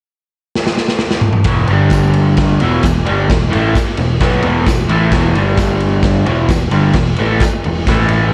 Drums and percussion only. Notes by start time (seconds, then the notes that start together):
0.55 snare
0.67 snare
0.78 snare
0.89 snare
0.99 snare
1.11 snare
1.21 mid tom
1.33 mid tom
1.44 kick, snare, ride
1.67 ride
1.90 kick, snare, ride, tambourine
2.13 ride
2.37 kick, snare, ride
2.60 ride
2.83 kick, snare, ride, tambourine
3.06 ride
3.29 kick, snare, ride
3.53 ride
3.75 kick, snare, ride, tambourine
3.97 ride
4.21 kick, snare, ride
4.43 ride
4.66 kick, snare, ride, tambourine
4.89 ride
5.12 kick, snare, ride
5.35 ride
5.57 kick, snare, ride, tambourine
5.80 ride
6.03 kick, snare, ride
6.26 ride
6.49 kick, snare, ride, tambourine
6.71 ride
6.93 kick, snare, ride
7.17 ride
7.40 kick, snare, ride, tambourine
7.64 ride
7.87 kick, snare, ride
8.09 ride